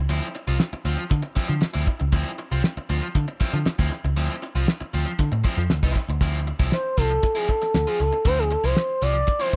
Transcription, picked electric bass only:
0.10 0.19 D2 medium
0.48 0.57 C2 medium
0.73 muted picked electric bass stroke soft
0.85 0.95 D2 medium
1.11 1.21 D3 medium
1.37 muted picked electric bass stroke soft
1.49 1.59 D3 medium
1.62 muted picked electric bass stroke soft
1.75 1.85 D2 medium
2.01 2.11 C#2 medium
2.13 2.23 D2 loud
2.52 2.61 C2 medium
2.77 muted picked electric bass stroke medium
2.90 2.99 D2 medium
3.15 3.25 D3 medium
3.41 muted picked electric bass stroke soft
3.54 3.63 D3 medium
3.66 muted picked electric bass stroke soft
3.79 3.89 D2 loud
4.05 4.14 C#2 medium
4.17 4.27 D2 loud
4.55 4.65 C2 medium
4.81 muted picked electric bass stroke soft
4.94 5.04 D2 loud
5.19 5.29 D3 medium
5.32 5.42 A2 medium
5.58 5.67 F2 medium
5.70 5.80 D2 loud
5.83 5.93 C2 loud
6.09 6.18 D2 medium
6.21 6.50 D2 loud
6.60 6.69 C2 medium
6.98 7.17 C2 medium
7.75 7.84 D2 medium
8.00 8.10 C#2 medium
8.26 8.55 D2 loud
8.64 8.74 C2 medium
9.02 9.22 C2 medium

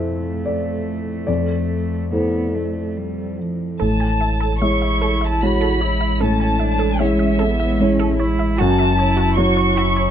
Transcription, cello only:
0.00 2.09 A3 medium
2.13 2.56 B3 medium
2.55 2.98 A3 soft
2.97 3.42 G3 soft
3.40 3.81 F3 soft
4.62 5.43 E4 medium
5.42 5.82 F#4 medium
5.80 6.21 E4 medium
6.20 6.61 C#4 medium
6.60 7.03 D4 medium
7.01 7.44 C#4 medium
7.42 7.82 B3 medium
7.81 8.19 C#4 medium
8.20 8.59 E4 medium
8.58 8.97 F#4 medium
8.98 9.38 E4 medium
9.36 9.77 F#4 medium
9.76 10.11 E4 medium

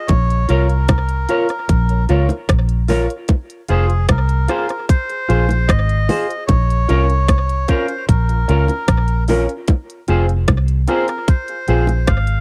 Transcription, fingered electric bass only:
0.10 0.47 A#1 loud
0.50 1.26 C2 medium
1.70 2.07 A#1 medium
2.10 2.29 C#2 loud
2.49 3.06 A#1 medium
3.70 4.07 F1 medium
4.09 4.47 C2 medium
5.30 5.67 A#1 medium
5.69 6.07 G#1 medium
6.49 6.87 A#1 loud
6.90 7.65 C2 medium
8.09 8.46 A#1 medium
8.49 8.68 C#2 loud
8.88 9.45 A#1 medium
10.09 10.46 F1 loud
10.48 10.86 C2 medium
11.69 12.06 A#1 medium
12.08 12.40 G#1 medium

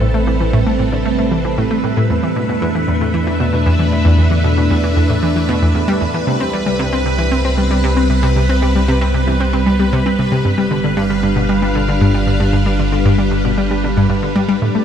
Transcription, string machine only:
0.00 2.10 G3 medium
0.00 2.10 C4 medium
0.00 3.72 A4 medium
0.00 10.45 E5 medium
2.10 6.27 A3 medium
2.31 7.77 D4 medium
2.61 14.85 B4 medium
6.27 14.85 G3 medium
6.59 10.45 C4 medium
10.73 14.85 D4 medium
10.73 14.62 F5 medium
14.69 14.85 C4 medium

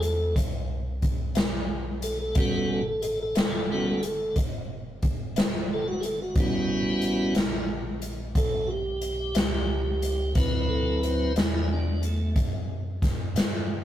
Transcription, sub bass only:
0.00 0.33 E2 medium
0.35 1.33 C2 medium
1.36 2.33 B1 medium
2.36 3.33 A1 medium
3.34 4.32 G1 medium
4.36 5.33 F#1 medium
5.34 6.32 G1 medium
6.35 7.33 A1 medium
7.34 8.32 A#1 medium
8.35 9.33 B1 medium
9.35 10.33 C#2 medium
10.36 11.33 D2 medium
11.35 12.33 E2 loud
12.36 13.33 F#2 medium
13.34 13.84 G2 medium

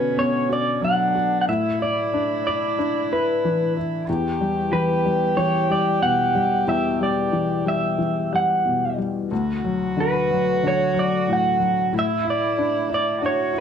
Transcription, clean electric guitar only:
0.00 0.20 B4 medium
0.19 0.48 C#5 medium
0.53 0.84 D5 medium
0.85 1.38 F#5 medium
1.41 1.48 F#5 medium
1.49 1.82 E5 medium
1.82 2.46 D5 medium
2.47 3.07 D5 medium
3.13 3.72 B4 medium
4.73 5.40 B4 medium
5.37 5.71 C#5 medium
5.72 6.01 D5 medium
6.03 6.64 F#5 medium
6.69 6.99 E5 medium
7.03 7.68 D5 medium
7.68 8.35 E5 medium
8.36 8.96 F#5 medium
10.00 10.67 B4 medium
10.68 10.99 C#5 medium
10.99 11.31 D5 medium
11.33 11.98 F#5 medium
11.99 12.29 E5 medium
12.30 12.89 D5 medium
12.94 13.25 D5 medium
13.26 13.58 C#5 medium

